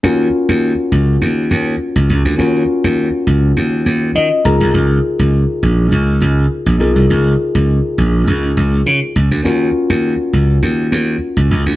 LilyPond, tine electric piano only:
\new Staff \with { instrumentName = "Tine electric piano" } { \time 4/4 \key ees \minor \tempo 4 = 102 << { r1 | r2. ees''8 bes''8 | r1 | r1 |
r1 | } \\ { <des' f' ges' bes'>1 | <des' f' ges' bes'>2.~ <des' f' ges' bes'>8 <ees' f' aes' bes'>8~ | <ees' f' aes' bes'>2.~ <ees' f' aes' bes'>8 <ees' f' aes' bes'>8~ | <ees' f' aes' bes'>2.~ <ees' f' aes' bes'>8 r8 |
<des' f' ges' bes'>1 | } >> }